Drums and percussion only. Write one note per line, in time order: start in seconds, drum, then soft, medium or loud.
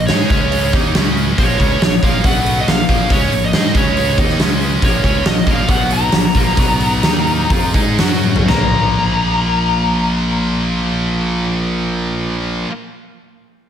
0.08 snare loud
0.08 open hi-hat medium
0.30 kick loud
0.30 open hi-hat medium
0.52 open hi-hat medium
0.73 kick loud
0.73 open hi-hat medium
0.95 snare loud
0.95 open hi-hat medium
1.17 open hi-hat soft
1.38 kick loud
1.38 open hi-hat medium
1.60 kick medium
1.60 open hi-hat soft
1.82 snare loud
1.82 open hi-hat medium
2.03 kick loud
2.03 open hi-hat medium
2.24 kick loud
2.24 open hi-hat medium
2.46 open hi-hat medium
2.68 snare loud
2.68 open hi-hat medium
2.89 kick loud
2.89 open hi-hat medium
3.10 kick loud
3.10 open hi-hat medium
3.32 open hi-hat medium
3.53 snare loud
3.53 open hi-hat medium
3.65 snare soft
3.75 kick loud
3.75 open hi-hat medium
3.97 open hi-hat medium
4.18 kick loud
4.18 open hi-hat medium
4.29 snare soft
4.39 snare loud
4.39 open hi-hat medium
4.61 open hi-hat soft
4.82 kick loud
4.82 open hi-hat medium
5.04 kick medium
5.04 open hi-hat soft
5.25 snare loud
5.25 open hi-hat medium
5.47 kick loud
5.47 open hi-hat soft
5.69 kick loud
5.69 open hi-hat medium
5.90 open hi-hat medium
6.12 snare loud
6.12 open hi-hat medium
6.35 kick medium
6.35 open hi-hat medium
6.57 kick loud
6.57 open hi-hat medium
6.80 open hi-hat medium
7.03 snare medium
7.03 open hi-hat medium
7.27 open hi-hat medium
7.50 kick loud
7.50 open hi-hat medium
7.74 kick loud
7.74 open hi-hat medium
7.98 snare loud
7.98 open hi-hat medium
8.23 high tom medium
8.36 floor tom medium
8.48 snare loud
8.48 floor tom loud